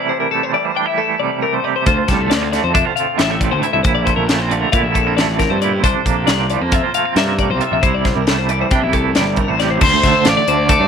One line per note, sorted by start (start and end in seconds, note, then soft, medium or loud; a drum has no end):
0.00 0.54 C3 medium
0.00 0.52 E3 medium
0.00 0.32 A3 medium
0.00 0.75 E4 medium
0.09 0.52 G3 medium
0.09 0.20 C5 medium
0.20 0.31 A#4 medium
0.31 0.98 A3 medium
0.31 0.43 A4 medium
0.43 0.54 C5 medium
0.53 1.90 E3 medium
0.53 1.19 G3 medium
0.53 0.65 D5 medium
0.65 0.76 C5 medium
0.75 0.86 D4 medium
0.75 0.87 G5 medium
0.86 1.64 E4 soft
0.86 0.98 E5 medium
0.98 1.42 A3 medium
0.98 1.20 A4 medium
1.20 1.62 C3 medium
1.20 1.87 G3 medium
1.20 1.42 D5 medium
1.42 2.21 A3 soft
1.42 1.53 A#4 medium
1.54 1.64 C5 medium
1.63 1.83 C3 medium
1.63 1.84 G4 medium
1.63 1.75 D5 medium
1.76 1.85 C5 medium
1.86 3.61 D2 medium
1.86 1.96 D2 medium
1.86 2.74 F4 medium
1.86 2.08 C5 medium
1.86 kick medium
1.86 closed hi-hat medium
2.08 2.27 C2 medium
2.08 2.21 G3 medium
2.08 2.30 A4 medium
2.08 kick medium
2.08 snare soft
2.08 closed hi-hat medium
2.21 2.30 A3 soft
2.30 2.58 D2 medium
2.30 2.43 A3 medium
2.30 2.51 D5 medium
2.30 snare medium
2.30 closed hi-hat medium
2.43 2.94 C4 soft
2.52 4.50 D3 medium
2.52 3.18 A3 medium
2.52 2.63 D5 medium
2.52 snare soft
2.52 closed hi-hat medium
2.64 2.82 F2 medium
2.64 2.74 C5 medium
2.74 2.85 D4 medium
2.74 2.85 E5 medium
2.74 kick loud
2.74 closed hi-hat medium
2.85 3.63 F4 soft
2.85 2.95 C5 medium
2.95 3.40 C4 medium
2.95 3.17 F5 medium
2.95 closed hi-hat medium
3.18 3.52 A1 medium
3.18 3.85 A2 medium
3.18 3.30 G3 medium
3.18 3.41 E5 medium
3.18 snare loud
3.18 closed hi-hat medium
3.30 3.85 A3 soft
3.41 3.89 C4 medium
3.41 3.51 D5 medium
3.41 kick medium
3.41 closed hi-hat medium
3.51 3.61 D2 medium
3.51 3.62 C5 medium
3.62 3.85 D2 medium
3.62 3.83 E4 medium
3.62 3.72 E5 medium
3.62 closed hi-hat medium
3.73 3.83 C2 medium
3.73 3.83 E5 medium
3.83 4.12 A#1 medium
3.83 4.52 A#2 medium
3.83 4.73 E4 medium
3.83 3.94 C5 medium
3.83 kick loud
3.83 closed hi-hat medium
3.95 4.05 D5 medium
4.05 4.29 A3 medium
4.05 4.16 C5 medium
4.05 kick medium
4.05 closed hi-hat medium
4.16 4.64 A#1 medium
4.16 4.28 A#4 medium
4.28 4.42 A3 medium
4.28 4.38 A4 medium
4.28 snare medium
4.28 closed hi-hat medium
4.38 4.95 C4 soft
4.38 4.50 C5 medium
4.50 6.50 D3 medium
4.50 4.94 A3 medium
4.50 4.60 D5 medium
4.50 closed hi-hat medium
4.60 4.72 A#4 medium
4.72 4.84 A#2 medium
4.72 5.62 E4 medium
4.72 4.83 F5 medium
4.72 kick loud
4.72 closed hi-hat medium
4.83 5.16 A#1 medium
4.83 4.95 E5 medium
4.94 5.07 A3 medium
4.94 5.17 A4 medium
4.94 kick medium
4.94 closed hi-hat medium
5.07 5.40 C4 soft
5.16 5.44 A1 medium
5.16 5.62 F2 medium
5.16 5.82 A3 medium
5.16 5.39 D5 medium
5.16 snare loud
5.16 closed hi-hat medium
5.39 5.88 C4 medium
5.39 5.50 A#4 medium
5.39 kick medium
5.39 snare soft
5.39 closed hi-hat medium
5.50 5.78 G2 medium
5.50 5.61 C5 medium
5.62 5.82 A#2 medium
5.62 5.82 E4 medium
5.62 5.72 D5 medium
5.62 closed hi-hat medium
5.72 5.82 C5 medium
5.84 5.93 C2 loud
5.84 6.50 C3 medium
5.84 6.73 D4 medium
5.84 6.06 C5 medium
5.84 kick loud
5.84 closed hi-hat medium
6.06 6.24 A#1 medium
6.06 6.50 A#3 medium
6.06 6.26 A4 medium
6.06 kick medium
6.06 closed hi-hat medium
6.27 6.55 C2 medium
6.27 6.95 C4 medium
6.27 6.49 D5 medium
6.27 snare medium
6.27 closed hi-hat medium
6.50 7.80 F3 medium
6.50 6.61 G3 soft
6.50 6.62 D5 medium
6.50 closed hi-hat medium
6.61 6.80 F2 medium
6.61 7.16 A#3 soft
6.61 6.73 C5 medium
6.72 7.60 F4 medium
6.72 6.83 E5 medium
6.72 kick loud
6.72 closed hi-hat medium
6.83 6.94 C5 medium
6.94 7.05 A3 medium
6.94 7.16 F5 medium
6.94 closed hi-hat medium
7.05 7.37 C4 soft
7.16 7.51 G2 medium
7.16 7.59 C3 medium
7.16 7.80 A#3 medium
7.16 7.39 E5 medium
7.16 snare loud
7.16 closed hi-hat medium
7.37 7.50 A3 medium
7.37 7.50 D5 medium
7.37 kick medium
7.37 closed hi-hat medium
7.50 7.59 C2 medium
7.50 7.83 C4 soft
7.50 7.62 C5 medium
7.60 7.80 C3 medium
7.60 7.80 F4 medium
7.60 7.72 E5 medium
7.60 closed hi-hat medium
7.72 7.81 A#1 medium
7.72 7.83 E5 medium
7.82 8.11 C2 medium
7.82 8.49 C3 medium
7.82 8.71 E4 medium
7.82 7.94 C5 medium
7.82 kick loud
7.82 closed hi-hat medium
7.94 8.05 D5 medium
8.05 8.50 G3 medium
8.05 8.16 C5 medium
8.05 kick medium
8.05 snare soft
8.05 closed hi-hat medium
8.16 8.62 C2 medium
8.16 8.27 A#4 medium
8.27 8.93 A3 medium
8.27 8.38 A4 medium
8.27 snare medium
8.27 closed hi-hat medium
8.38 8.49 C5 medium
8.49 9.79 E3 medium
8.49 9.15 G3 medium
8.49 8.60 D5 medium
8.49 closed hi-hat medium
8.61 8.72 C5 medium
8.71 8.84 C3 medium
8.71 8.83 D4 medium
8.71 8.82 G5 medium
8.71 kick loud
8.71 closed hi-hat medium
8.82 9.16 C2 medium
8.82 9.60 E4 soft
8.82 8.93 E5 medium
8.93 9.36 A3 medium
8.93 9.16 A4 medium
8.93 kick medium
8.93 closed hi-hat medium
9.15 9.43 G1 medium
9.15 9.59 C3 medium
9.15 9.82 G3 medium
9.15 9.37 D5 medium
9.15 snare medium
9.15 closed hi-hat medium
9.36 10.25 A3 soft
9.36 9.48 A#4 medium
9.36 kick medium
9.36 closed hi-hat soft
9.48 9.76 A1 medium
9.48 9.59 C5 medium
9.60 9.79 C3 medium
9.60 9.80 G4 soft
9.60 9.71 D5 medium
9.60 snare soft
9.60 closed hi-hat medium
9.71 9.80 C5 medium
9.81 9.91 D2 medium
9.81 10.88 D2 medium
9.81 10.03 C5 medium
9.81 10.29 C5 medium
9.81 kick loud
9.81 crash loud
9.94 10.03 D2 medium
10.03 10.13 D2 medium
10.03 10.47 D3 medium
10.03 10.26 E5 medium
10.03 kick medium
10.03 snare soft
10.03 closed hi-hat medium
10.25 10.35 A1 medium
10.25 10.69 A3 medium
10.25 10.70 D5 medium
10.25 10.37 F5 medium
10.25 snare loud
10.25 closed hi-hat medium
10.37 10.48 D5 medium
10.48 10.75 D2 medium
10.48 10.88 D3 medium
10.48 10.69 C5 medium
10.48 closed hi-hat medium
10.69 10.88 A3 medium
10.69 10.81 A4 medium
10.69 10.88 D5 medium
10.69 kick loud
10.69 closed hi-hat loud
10.80 10.88 G2 medium
10.80 10.88 C5 medium